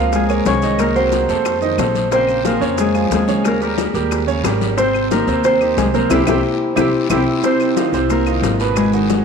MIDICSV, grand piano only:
0, 0, Header, 1, 2, 480
1, 0, Start_track
1, 0, Key_signature, -4, "minor"
1, 0, Tempo, 332226
1, 1139, Time_signature, 4, 2, 24, 8
1, 13362, End_track
2, 0, Start_track
2, 0, Title_t, "Grand piano"
2, 0, Program_c, 0, 0
2, 0, Note_on_c, 0, 53, 78
2, 0, Note_on_c, 0, 65, 78
2, 0, Note_on_c, 0, 77, 78
2, 332, Note_off_c, 0, 53, 0
2, 335, Note_off_c, 0, 65, 0
2, 339, Note_off_c, 0, 77, 0
2, 416, Note_on_c, 0, 58, 69
2, 424, Note_on_c, 0, 70, 67
2, 430, Note_on_c, 0, 73, 72
2, 811, Note_off_c, 0, 58, 0
2, 815, Note_off_c, 0, 70, 0
2, 819, Note_off_c, 0, 73, 0
2, 900, Note_on_c, 0, 51, 76
2, 912, Note_on_c, 0, 63, 74
2, 912, Note_on_c, 0, 75, 79
2, 1293, Note_off_c, 0, 51, 0
2, 1300, Note_off_c, 0, 63, 0
2, 1300, Note_off_c, 0, 75, 0
2, 1387, Note_on_c, 0, 54, 73
2, 1391, Note_on_c, 0, 66, 73
2, 1399, Note_on_c, 0, 70, 65
2, 1777, Note_off_c, 0, 54, 0
2, 1779, Note_off_c, 0, 66, 0
2, 1784, Note_off_c, 0, 70, 0
2, 1869, Note_on_c, 0, 57, 73
2, 1877, Note_on_c, 0, 69, 68
2, 1880, Note_on_c, 0, 72, 68
2, 2258, Note_off_c, 0, 57, 0
2, 2262, Note_off_c, 0, 69, 0
2, 2264, Note_off_c, 0, 72, 0
2, 2329, Note_on_c, 0, 51, 74
2, 2335, Note_on_c, 0, 63, 78
2, 2342, Note_on_c, 0, 75, 74
2, 2529, Note_off_c, 0, 51, 0
2, 2533, Note_off_c, 0, 63, 0
2, 2537, Note_off_c, 0, 75, 0
2, 2578, Note_on_c, 0, 57, 60
2, 2586, Note_on_c, 0, 69, 60
2, 2586, Note_on_c, 0, 72, 66
2, 2972, Note_off_c, 0, 57, 0
2, 2976, Note_off_c, 0, 69, 0
2, 2976, Note_off_c, 0, 72, 0
2, 3054, Note_on_c, 0, 49, 78
2, 3061, Note_on_c, 0, 58, 80
2, 3061, Note_on_c, 0, 70, 81
2, 3449, Note_off_c, 0, 49, 0
2, 3453, Note_off_c, 0, 58, 0
2, 3453, Note_off_c, 0, 70, 0
2, 3530, Note_on_c, 0, 53, 62
2, 3534, Note_on_c, 0, 65, 67
2, 3542, Note_on_c, 0, 68, 66
2, 3729, Note_off_c, 0, 53, 0
2, 3732, Note_off_c, 0, 65, 0
2, 3737, Note_off_c, 0, 68, 0
2, 3766, Note_on_c, 0, 49, 84
2, 3774, Note_on_c, 0, 61, 78
2, 3774, Note_on_c, 0, 73, 86
2, 4164, Note_off_c, 0, 49, 0
2, 4169, Note_off_c, 0, 61, 0
2, 4169, Note_off_c, 0, 73, 0
2, 4258, Note_on_c, 0, 53, 73
2, 4260, Note_on_c, 0, 65, 73
2, 4266, Note_on_c, 0, 68, 67
2, 4651, Note_off_c, 0, 53, 0
2, 4653, Note_off_c, 0, 65, 0
2, 4656, Note_off_c, 0, 68, 0
2, 4734, Note_on_c, 0, 49, 80
2, 4742, Note_on_c, 0, 61, 78
2, 4746, Note_on_c, 0, 73, 78
2, 5129, Note_off_c, 0, 49, 0
2, 5134, Note_off_c, 0, 61, 0
2, 5136, Note_off_c, 0, 73, 0
2, 5221, Note_on_c, 0, 55, 70
2, 5227, Note_on_c, 0, 67, 71
2, 5229, Note_on_c, 0, 70, 70
2, 5613, Note_off_c, 0, 55, 0
2, 5616, Note_off_c, 0, 67, 0
2, 5618, Note_off_c, 0, 70, 0
2, 5701, Note_on_c, 0, 67, 70
2, 5702, Note_on_c, 0, 55, 72
2, 5708, Note_on_c, 0, 70, 70
2, 6093, Note_off_c, 0, 67, 0
2, 6094, Note_off_c, 0, 55, 0
2, 6097, Note_off_c, 0, 70, 0
2, 6170, Note_on_c, 0, 49, 80
2, 6177, Note_on_c, 0, 73, 83
2, 6179, Note_on_c, 0, 61, 80
2, 6370, Note_off_c, 0, 49, 0
2, 6374, Note_off_c, 0, 73, 0
2, 6375, Note_off_c, 0, 61, 0
2, 6414, Note_on_c, 0, 55, 69
2, 6414, Note_on_c, 0, 67, 68
2, 6419, Note_on_c, 0, 70, 68
2, 6809, Note_off_c, 0, 55, 0
2, 6809, Note_off_c, 0, 67, 0
2, 6812, Note_off_c, 0, 70, 0
2, 6895, Note_on_c, 0, 48, 77
2, 6897, Note_on_c, 0, 60, 81
2, 6898, Note_on_c, 0, 72, 83
2, 7290, Note_off_c, 0, 48, 0
2, 7291, Note_off_c, 0, 60, 0
2, 7292, Note_off_c, 0, 72, 0
2, 7383, Note_on_c, 0, 51, 69
2, 7384, Note_on_c, 0, 63, 68
2, 7389, Note_on_c, 0, 67, 67
2, 7578, Note_off_c, 0, 51, 0
2, 7578, Note_off_c, 0, 63, 0
2, 7581, Note_off_c, 0, 67, 0
2, 7626, Note_on_c, 0, 48, 87
2, 7636, Note_on_c, 0, 60, 87
2, 7636, Note_on_c, 0, 72, 83
2, 8016, Note_off_c, 0, 48, 0
2, 8022, Note_off_c, 0, 60, 0
2, 8022, Note_off_c, 0, 72, 0
2, 8102, Note_on_c, 0, 51, 71
2, 8108, Note_on_c, 0, 63, 69
2, 8109, Note_on_c, 0, 67, 71
2, 8494, Note_off_c, 0, 51, 0
2, 8498, Note_off_c, 0, 63, 0
2, 8498, Note_off_c, 0, 67, 0
2, 8582, Note_on_c, 0, 60, 71
2, 8584, Note_on_c, 0, 48, 77
2, 8589, Note_on_c, 0, 72, 81
2, 8778, Note_off_c, 0, 60, 0
2, 8779, Note_off_c, 0, 48, 0
2, 8782, Note_off_c, 0, 72, 0
2, 8822, Note_on_c, 0, 64, 97
2, 8823, Note_on_c, 0, 67, 96
2, 8825, Note_on_c, 0, 60, 94
2, 8974, Note_off_c, 0, 64, 0
2, 8975, Note_off_c, 0, 67, 0
2, 8976, Note_off_c, 0, 60, 0
2, 9056, Note_on_c, 0, 60, 91
2, 9058, Note_on_c, 0, 64, 92
2, 9058, Note_on_c, 0, 67, 92
2, 9211, Note_off_c, 0, 60, 0
2, 9212, Note_off_c, 0, 64, 0
2, 9212, Note_off_c, 0, 67, 0
2, 9767, Note_on_c, 0, 60, 90
2, 9769, Note_on_c, 0, 64, 96
2, 9769, Note_on_c, 0, 67, 98
2, 9926, Note_off_c, 0, 60, 0
2, 9927, Note_off_c, 0, 64, 0
2, 9927, Note_off_c, 0, 67, 0
2, 10264, Note_on_c, 0, 67, 84
2, 10265, Note_on_c, 0, 64, 92
2, 10267, Note_on_c, 0, 60, 88
2, 10416, Note_off_c, 0, 67, 0
2, 10417, Note_off_c, 0, 64, 0
2, 10418, Note_off_c, 0, 60, 0
2, 10739, Note_on_c, 0, 48, 77
2, 10741, Note_on_c, 0, 60, 80
2, 10744, Note_on_c, 0, 72, 76
2, 11133, Note_off_c, 0, 48, 0
2, 11134, Note_off_c, 0, 60, 0
2, 11136, Note_off_c, 0, 72, 0
2, 11223, Note_on_c, 0, 51, 68
2, 11229, Note_on_c, 0, 63, 69
2, 11231, Note_on_c, 0, 65, 71
2, 11419, Note_off_c, 0, 51, 0
2, 11422, Note_off_c, 0, 63, 0
2, 11423, Note_off_c, 0, 65, 0
2, 11459, Note_on_c, 0, 48, 79
2, 11462, Note_on_c, 0, 60, 79
2, 11468, Note_on_c, 0, 72, 81
2, 11854, Note_off_c, 0, 48, 0
2, 11855, Note_off_c, 0, 60, 0
2, 11859, Note_off_c, 0, 72, 0
2, 11941, Note_on_c, 0, 51, 72
2, 11949, Note_on_c, 0, 63, 72
2, 11949, Note_on_c, 0, 65, 67
2, 12335, Note_off_c, 0, 51, 0
2, 12339, Note_off_c, 0, 63, 0
2, 12339, Note_off_c, 0, 65, 0
2, 12430, Note_on_c, 0, 47, 82
2, 12435, Note_on_c, 0, 59, 77
2, 12436, Note_on_c, 0, 71, 84
2, 12820, Note_off_c, 0, 47, 0
2, 12823, Note_off_c, 0, 59, 0
2, 12824, Note_off_c, 0, 71, 0
2, 12904, Note_on_c, 0, 51, 70
2, 12907, Note_on_c, 0, 63, 72
2, 12915, Note_on_c, 0, 66, 71
2, 13296, Note_off_c, 0, 51, 0
2, 13299, Note_off_c, 0, 63, 0
2, 13303, Note_off_c, 0, 66, 0
2, 13362, End_track
0, 0, End_of_file